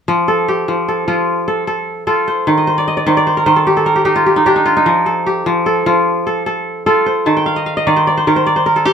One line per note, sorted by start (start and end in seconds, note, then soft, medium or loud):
0.08 0.67 F3 medium
0.28 0.88 A4 medium
0.48 1.90 G4 medium
0.68 1.07 F3 medium
0.88 1.47 A4 medium
1.08 2.53 F3 medium
1.08 2.07 F4 medium
1.48 1.67 A4 medium
1.67 2.06 A4 medium
2.07 3.58 F4 medium
2.07 3.43 A4 medium
2.28 2.67 C5 medium
2.47 3.05 D#3 medium
2.58 2.84 D#5 soft
2.67 3.06 C5 medium
2.78 2.97 D5 medium
2.88 3.23 D#5 medium
2.97 3.17 D5 medium
3.06 3.45 D#3 medium
3.06 3.26 C5 medium
3.17 3.52 D5 medium
3.27 3.46 C5 medium
3.37 3.62 A#4 medium
3.46 4.92 D#3 medium
3.46 4.65 C5 medium
3.56 3.76 A4 medium
3.67 3.95 G4 medium
3.77 5.06 A4 medium
3.86 5.12 A#4 medium
3.96 4.05 G4 medium
4.05 4.36 D#4 medium
4.05 4.26 G4 medium
4.16 4.65 F4 medium
4.26 4.46 G4 medium
4.36 4.55 D#4 medium
4.46 4.83 D4 medium
4.46 5.26 G4 medium
4.56 4.76 D#4 medium
4.66 5.86 F4 medium
4.77 6.39 D#4 medium
4.86 5.45 F3 medium
5.06 5.66 A4 medium
5.26 6.68 G4 medium
5.46 5.85 F3 medium
5.66 6.26 A4 medium
5.86 7.31 F3 medium
5.86 6.86 F4 medium
6.27 6.46 A4 medium
6.46 6.86 A4 medium
6.86 8.38 F4 medium
6.86 8.18 A4 medium
7.06 7.96 C5 medium
7.26 7.86 D#3 medium
7.26 8.13 A5 medium
7.37 8.30 G5 medium
7.46 7.66 F5 medium
7.56 7.76 D#5 medium
7.66 8.66 F5 medium
7.77 8.13 D#5 medium
7.87 8.26 D#3 medium
7.87 8.07 D5 medium
7.96 8.17 C5 medium
8.07 8.33 D5 medium
8.17 8.36 C5 medium
8.27 8.93 D#3 medium
8.27 8.66 A#4 medium
8.36 8.56 C5 medium
8.47 8.93 D5 medium
8.56 8.93 C5 medium
8.66 8.93 A#4 medium
8.76 8.93 A4 medium
8.86 8.93 G4 medium